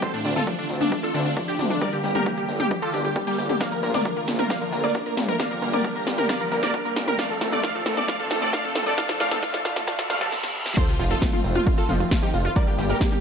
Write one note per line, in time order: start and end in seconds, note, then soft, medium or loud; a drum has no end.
0.00 5.36 D3 medium
0.00 0.08 D3 loud
0.00 1.80 A3 medium
0.00 1.80 C4 medium
0.00 1.80 F4 medium
0.00 0.10 A4 medium
0.00 0.10 C5 loud
0.00 0.10 C5 medium
0.00 kick loud
0.00 closed hi-hat medium
0.13 0.19 A2 medium
0.13 0.21 D4 medium
0.13 closed hi-hat soft
0.25 0.40 D2 loud
0.25 0.28 D3 medium
0.25 0.32 D4 medium
0.25 open hi-hat loud
0.36 0.45 D3 medium
0.36 0.43 F4 medium
0.36 0.43 A4 medium
0.36 0.44 A4 medium
0.36 closed hi-hat soft
0.36 mid tom medium
0.47 0.53 F3 medium
0.47 0.55 D4 medium
0.47 kick loud
0.47 closed hi-hat medium
0.58 0.64 D3 medium
0.58 0.66 D4 medium
0.58 closed hi-hat soft
0.69 0.84 D2 medium
0.69 open hi-hat loud
0.81 0.87 D4 loud
0.81 0.88 D4 medium
0.81 closed hi-hat medium
0.81 mid tom medium
0.92 0.99 D4 medium
0.92 kick loud
0.92 closed hi-hat medium
1.03 1.07 D4 medium
1.03 1.11 F4 medium
1.03 1.11 A4 medium
1.03 closed hi-hat soft
1.14 1.29 D2 medium
1.14 1.23 D3 loud
1.14 1.22 D4 medium
1.14 open hi-hat loud
1.25 1.33 D4 medium
1.25 closed hi-hat soft
1.37 1.43 F3 medium
1.37 1.44 D4 medium
1.37 kick loud
1.37 closed hi-hat medium
1.48 1.54 D3 medium
1.48 1.55 D4 medium
1.48 1.55 G4 medium
1.48 closed hi-hat medium
1.59 1.74 D2 medium
1.59 1.66 D4 medium
1.59 1.67 D4 medium
1.59 open hi-hat loud
1.59 mid tom medium
1.65 closed hi-hat medium
1.70 1.78 D4 medium
1.70 1.76 D4 loud
1.70 closed hi-hat soft
1.81 1.87 G3 loud
1.81 3.59 G3 medium
1.81 7.15 A#3 medium
1.81 3.59 G4 medium
1.81 1.89 A#4 medium
1.81 1.89 D5 loud
1.81 kick loud
1.81 closed hi-hat medium
1.92 1.99 D3 medium
1.92 2.00 G4 medium
1.92 closed hi-hat soft
2.04 2.19 G1 loud
2.04 2.07 G3 medium
2.04 2.11 G4 medium
2.04 open hi-hat loud
2.15 2.24 G3 medium
2.15 2.22 G4 medium
2.15 2.22 A#4 medium
2.15 2.23 A#4 medium
2.15 closed hi-hat soft
2.15 mid tom medium
2.26 2.32 A#3 medium
2.26 2.34 G4 medium
2.26 kick loud
2.26 closed hi-hat medium
2.37 2.43 G3 medium
2.37 2.45 G4 medium
2.37 closed hi-hat soft
2.49 2.64 G1 medium
2.49 open hi-hat loud
2.60 2.66 G4 loud
2.60 2.67 G4 medium
2.60 closed hi-hat medium
2.60 mid tom medium
2.71 2.78 G4 medium
2.71 2.79 G4 medium
2.71 kick loud
2.71 closed hi-hat medium
2.82 2.90 F4 medium
2.82 2.86 G4 medium
2.82 2.90 A4 loud
2.82 2.90 A4 medium
2.82 closed hi-hat soft
2.93 3.08 G1 medium
2.93 2.97 D4 medium
2.93 3.01 G4 medium
2.93 open hi-hat loud
3.04 3.12 G4 medium
3.04 closed hi-hat medium
3.16 3.22 G3 medium
3.16 3.23 G4 medium
3.16 kick loud
3.16 closed hi-hat medium
3.27 3.36 G3 loud
3.27 3.34 A#3 medium
3.27 3.34 G4 loud
3.27 3.35 G4 medium
3.27 closed hi-hat medium
3.38 3.53 G1 medium
3.38 3.46 G4 medium
3.38 open hi-hat loud
3.44 closed hi-hat medium
3.49 3.55 D3 medium
3.49 3.57 G4 medium
3.49 closed hi-hat soft
3.49 mid tom medium
3.61 5.38 A3 medium
3.61 3.66 A#3 loud
3.61 5.38 F4 loud
3.61 3.68 D5 medium
3.61 3.68 F5 medium
3.61 kick loud
3.61 snare soft
3.61 closed hi-hat medium
3.61 riser medium
3.72 3.78 F3 medium
3.72 3.79 A#4 medium
3.72 closed hi-hat soft
3.83 3.98 A#1 loud
3.83 3.87 A#3 medium
3.83 3.90 A#4 medium
3.83 3.91 A#4 medium
3.83 open hi-hat loud
3.94 4.03 A#3 medium
3.94 4.02 A#4 medium
3.94 4.02 D5 medium
3.94 snare soft
3.94 closed hi-hat soft
3.94 mid tom medium
4.05 4.11 D4 medium
4.05 4.13 A#4 medium
4.05 kick loud
4.05 closed hi-hat medium
4.17 4.22 A#3 medium
4.17 4.24 A#4 medium
4.17 closed hi-hat soft
4.28 4.43 A#1 medium
4.28 snare soft
4.28 open hi-hat loud
4.39 4.45 A#4 medium
4.39 4.46 A#4 medium
4.39 closed hi-hat medium
4.39 mid tom medium
4.50 4.56 A#3 medium
4.50 4.58 D5 medium
4.50 4.58 F5 medium
4.50 kick loud
4.50 snare medium
4.50 closed hi-hat medium
4.61 4.67 F3 medium
4.61 4.69 A#4 medium
4.61 closed hi-hat soft
4.72 4.87 A#1 medium
4.72 4.76 A#3 medium
4.72 4.80 A#4 medium
4.72 open hi-hat loud
4.84 4.93 A#3 medium
4.84 4.91 A#4 medium
4.84 4.91 D5 medium
4.84 closed hi-hat medium
4.95 5.01 D4 medium
4.95 5.02 A#4 medium
4.95 kick loud
4.95 closed hi-hat medium
5.06 5.12 A#3 medium
5.06 5.13 A#4 medium
5.06 5.14 A#4 medium
5.06 closed hi-hat medium
5.17 5.32 A#1 medium
5.17 snare medium
5.17 open hi-hat loud
5.17 mid tom medium
5.23 closed hi-hat medium
5.28 5.36 A#4 medium
5.28 5.34 A#4 medium
5.28 5.36 A#4 medium
5.28 closed hi-hat soft
5.39 7.17 D3 medium
5.39 7.17 G3 medium
5.39 5.46 A#3 loud
5.39 7.17 G4 medium
5.39 5.47 D5 medium
5.39 5.47 F5 loud
5.39 kick loud
5.39 snare medium
5.39 closed hi-hat medium
5.51 5.57 F3 medium
5.51 5.58 A#4 medium
5.51 closed hi-hat medium
5.62 5.77 G1 loud
5.62 5.66 A#3 medium
5.62 5.69 A#4 medium
5.62 5.70 A#4 medium
5.62 open hi-hat loud
5.73 5.82 A#3 medium
5.73 5.81 A#4 medium
5.73 5.81 D5 medium
5.73 closed hi-hat medium
5.73 mid tom medium
5.84 5.90 D4 medium
5.84 5.92 A#4 medium
5.84 kick loud
5.84 closed hi-hat medium
5.96 6.01 A#3 medium
5.96 6.03 A#4 medium
5.96 closed hi-hat medium
6.07 6.22 G1 loud
6.07 snare medium
6.07 open hi-hat loud
6.18 6.25 A#4 medium
6.18 6.24 A#4 medium
6.18 6.26 A#4 medium
6.18 closed hi-hat medium
6.18 mid tom medium
6.29 6.35 A#3 loud
6.29 6.37 D5 medium
6.29 6.37 F5 medium
6.29 6.37 F5 loud
6.29 kick loud
6.29 snare medium
6.29 closed hi-hat medium
6.40 6.46 F3 medium
6.40 6.48 A#4 medium
6.40 closed hi-hat medium
6.52 6.67 G1 medium
6.52 6.55 A#3 medium
6.52 6.59 A#4 medium
6.52 open hi-hat loud
6.63 6.72 A#3 medium
6.63 6.70 A#4 medium
6.63 6.70 D5 medium
6.63 snare medium
6.63 closed hi-hat medium
6.74 6.80 D4 medium
6.74 6.81 A#4 medium
6.74 6.82 A#4 medium
6.74 kick loud
6.74 closed hi-hat medium
6.85 6.91 A#3 medium
6.85 6.93 A#4 medium
6.85 closed hi-hat medium
6.96 7.11 G1 medium
6.96 snare medium
6.96 open hi-hat loud
7.02 closed hi-hat medium
7.08 7.13 A#4 loud
7.08 7.15 A#4 medium
7.08 closed hi-hat medium
7.08 mid tom medium
7.19 8.96 D#3 medium
7.19 7.25 A3 loud
7.19 10.29 A3 medium
7.19 10.29 C4 medium
7.19 10.29 F4 loud
7.19 7.26 D5 medium
7.19 7.26 F5 loud
7.19 kick loud
7.19 snare medium
7.19 closed hi-hat medium
7.30 7.36 F3 medium
7.30 7.38 A4 medium
7.30 closed hi-hat medium
7.41 7.56 F1 loud
7.41 7.45 A3 medium
7.41 7.49 A4 medium
7.41 snare medium
7.41 open hi-hat loud
7.52 7.61 A3 medium
7.52 7.60 A4 medium
7.52 7.60 D5 medium
7.52 closed hi-hat medium
7.52 mid tom medium
7.63 7.69 A3 loud
7.63 7.71 D5 medium
7.63 7.71 F5 loud
7.63 kick loud
7.63 snare medium
7.63 closed hi-hat medium
7.75 7.81 F3 medium
7.75 7.82 A4 medium
7.75 closed hi-hat medium
7.86 8.01 F1 medium
7.86 7.90 A3 medium
7.86 7.93 A4 medium
7.86 7.94 A4 medium
7.86 snare medium
7.86 open hi-hat loud
7.97 8.06 A3 medium
7.97 8.05 A4 medium
7.97 8.05 D5 medium
7.97 8.05 D5 loud
7.97 closed hi-hat medium
7.97 mid tom medium
8.08 8.14 A3 loud
8.08 8.16 D5 medium
8.08 8.16 F5 loud
8.08 8.16 F5 medium
8.08 kick loud
8.08 snare medium
8.08 closed hi-hat medium
8.20 8.25 F3 medium
8.20 8.27 A4 medium
8.20 closed hi-hat medium
8.31 8.46 F1 medium
8.31 8.34 A3 medium
8.31 8.38 A4 medium
8.31 snare medium
8.31 open hi-hat loud
8.42 8.51 A3 medium
8.42 8.49 A4 medium
8.42 8.49 D5 loud
8.42 closed hi-hat medium
8.53 8.59 A3 loud
8.53 8.61 D5 medium
8.53 8.61 F5 medium
8.53 8.61 F5 loud
8.53 kick loud
8.53 snare medium
8.53 closed hi-hat medium
8.64 8.70 F3 medium
8.64 8.72 A4 medium
8.64 closed hi-hat medium
8.75 8.90 F1 medium
8.75 8.79 A3 medium
8.75 8.83 A4 medium
8.75 snare medium
8.75 open hi-hat loud
8.75 mid tom medium
8.81 closed hi-hat medium
8.86 8.96 A3 medium
8.86 8.94 A4 medium
8.86 8.94 D5 medium
8.86 8.94 D5 loud
8.86 closed hi-hat medium
8.98 10.31 D3 medium
8.98 9.04 A3 loud
8.98 9.05 D5 medium
8.98 9.05 F5 loud
8.98 kick loud
8.98 snare medium
8.98 closed hi-hat medium
9.09 9.15 F3 medium
9.09 9.16 A4 medium
9.09 9.17 A4 medium
9.09 snare medium
9.09 closed hi-hat medium
9.20 9.35 F1 loud
9.20 9.26 A3 loud
9.20 9.28 D5 medium
9.20 9.28 F5 loud
9.20 snare medium
9.20 open hi-hat loud
9.31 9.37 F3 medium
9.31 9.39 A4 medium
9.31 snare medium
9.31 closed hi-hat medium
9.31 mid tom medium
9.43 9.49 A3 loud
9.43 9.50 D5 medium
9.43 9.50 F5 loud
9.43 kick loud
9.43 snare loud
9.43 closed hi-hat medium
9.54 9.60 F3 medium
9.54 9.61 A4 medium
9.54 snare medium
9.54 closed hi-hat medium
9.65 9.80 F1 loud
9.65 9.71 A3 loud
9.65 9.72 D5 medium
9.65 9.72 F5 loud
9.65 kick medium
9.65 snare loud
9.65 open hi-hat loud
9.76 9.82 F3 medium
9.76 9.84 A4 medium
9.76 snare medium
9.76 closed hi-hat medium
9.76 mid tom medium
9.87 9.93 A3 loud
9.87 9.95 D5 medium
9.87 9.95 F5 loud
9.87 kick loud
9.87 snare medium
9.87 closed hi-hat medium
9.87 reverse cymbal medium
9.98 10.05 F3 medium
9.98 10.06 A4 medium
9.98 snare medium
9.98 closed hi-hat medium
10.10 10.25 F1 medium
10.10 10.16 A3 loud
10.10 10.17 D5 medium
10.10 10.17 F5 loud
10.10 snare loud
10.10 open hi-hat loud
10.10 mid tom medium
10.21 10.27 F3 medium
10.21 10.28 A4 medium
10.21 snare loud
10.21 closed hi-hat medium
10.32 snare medium
10.43 snare medium
10.66 snare medium
10.77 12.54 D#3 medium
10.77 10.83 F3 loud
10.77 12.54 A3 medium
10.77 12.54 C4 medium
10.77 12.54 F4 medium
10.77 10.84 A4 medium
10.77 10.84 C5 loud
10.77 10.85 C5 loud
10.77 kick loud
10.77 closed hi-hat loud
10.77 crash loud
10.77 sub drop medium
10.88 10.94 C3 medium
10.88 10.96 F4 medium
10.88 closed hi-hat soft
10.99 11.14 F1 loud
10.99 11.03 F3 medium
10.99 11.07 F4 medium
10.99 open hi-hat loud
11.11 11.19 F3 medium
11.11 11.18 F4 medium
11.11 11.18 A4 medium
11.11 closed hi-hat soft
11.22 11.28 A3 medium
11.22 11.29 F4 medium
11.22 kick loud
11.22 snare loud
11.22 closed hi-hat loud
11.22 mid tom medium
11.33 11.39 F3 medium
11.33 11.40 F4 medium
11.33 11.41 F4 medium
11.33 closed hi-hat soft
11.33 mid tom medium
11.44 11.59 F1 loud
11.44 open hi-hat loud
11.55 11.63 F4 medium
11.55 11.61 F4 loud
11.55 11.63 F4 medium
11.55 closed hi-hat soft
11.55 mid tom medium
11.66 11.74 F4 medium
11.66 kick loud
11.66 closed hi-hat medium
11.78 11.85 F4 medium
11.78 11.81 F4 medium
11.78 11.85 A4 medium
11.78 11.85 A4 loud
11.78 closed hi-hat soft
11.89 12.04 F1 medium
11.89 11.98 F3 loud
11.89 11.96 F4 medium
11.89 open hi-hat loud
11.89 mid tom medium
12.00 12.07 F4 medium
12.00 12.08 F4 medium
12.00 closed hi-hat soft
12.11 12.17 A3 medium
12.11 12.19 F4 medium
12.11 kick loud
12.11 snare loud
12.11 closed hi-hat loud
12.22 12.28 F3 medium
12.22 12.30 D#4 medium
12.22 12.30 G4 medium
12.22 closed hi-hat soft
12.34 12.49 F1 medium
12.34 12.41 F4 medium
12.34 open hi-hat loud
12.45 12.52 F4 medium
12.45 12.51 F4 loud
12.45 12.52 F4 medium
12.56 13.21 D3 medium
12.56 12.62 G3 loud
12.56 13.21 G3 medium
12.56 13.21 A#3 medium
12.56 13.21 G4 medium
12.56 12.64 A#4 medium
12.56 12.64 D5 loud
12.56 kick loud
12.56 closed hi-hat medium
12.67 12.73 D3 medium
12.67 12.75 G4 medium
12.67 closed hi-hat soft
12.78 12.93 G1 loud
12.78 12.82 G3 medium
12.78 12.86 G4 medium
12.78 open hi-hat loud
12.90 12.99 G3 medium
12.90 12.97 G4 medium
12.90 12.97 A#4 medium
12.90 closed hi-hat soft
13.01 13.07 A#3 medium
13.01 13.08 G4 medium
13.01 kick loud
13.01 snare loud
13.01 closed hi-hat medium
13.01 mid tom medium
13.12 13.18 G3 medium
13.12 13.19 G4 medium
13.12 13.20 G4 medium
13.12 closed hi-hat soft
13.12 mid tom medium